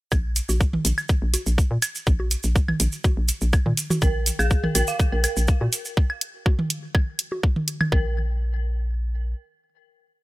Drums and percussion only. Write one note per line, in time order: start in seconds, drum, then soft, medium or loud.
0.12 kick loud
0.12 claves medium
0.12 maracas soft
0.36 closed hi-hat medium
0.36 maracas medium
0.49 low bongo soft
0.49 maracas medium
0.61 kick loud
0.61 maracas soft
0.73 mid tom medium
0.85 closed hi-hat medium
0.85 maracas medium
0.98 claves medium
0.98 maracas soft
1.09 kick loud
1.09 maracas soft
1.34 closed hi-hat medium
1.34 low bongo soft
1.34 maracas medium
1.46 maracas soft
1.58 kick loud
1.58 maracas soft
1.82 closed hi-hat medium
1.82 claves medium
1.82 maracas medium
1.95 maracas medium
2.07 kick loud
2.07 maracas soft
2.20 low bongo soft
2.31 closed hi-hat medium
2.31 maracas medium
2.43 maracas medium
2.56 kick loud
2.56 maracas soft
2.68 mid tom medium
2.68 claves medium
2.80 closed hi-hat medium
2.80 maracas medium
2.92 maracas soft
3.04 kick loud
3.04 low bongo soft
3.04 maracas soft
3.28 closed hi-hat medium
3.28 maracas medium
3.41 maracas medium
3.53 kick loud
3.53 claves medium
3.53 maracas soft
3.66 mid tom medium
3.77 closed hi-hat medium
3.77 maracas medium
3.90 mid tom medium
3.90 low bongo soft
3.90 maracas medium
4.02 kick loud
4.02 maracas soft
4.26 closed hi-hat loud
4.26 maracas loud
4.39 claves medium
4.39 maracas medium
4.51 kick loud
4.51 maracas soft
4.64 mid tom medium
4.75 closed hi-hat medium
4.75 low bongo soft
4.75 maracas medium
4.87 maracas medium
5.00 kick loud
5.00 maracas soft
5.24 closed hi-hat loud
5.24 claves medium
5.24 maracas medium
5.37 maracas medium
5.48 kick loud
5.48 maracas soft
5.61 low bongo soft
5.73 closed hi-hat medium
5.73 maracas medium
5.85 maracas soft
5.97 kick loud
6.10 claves medium
6.21 closed hi-hat loud
6.46 kick loud
6.46 low bongo soft
6.59 mid tom medium
6.70 closed hi-hat medium
6.95 kick loud
6.95 claves medium
7.19 closed hi-hat medium
7.32 low bongo soft
7.43 kick loud
7.56 mid tom medium
7.68 closed hi-hat loud
7.81 mid tom medium
7.81 claves medium
7.92 kick loud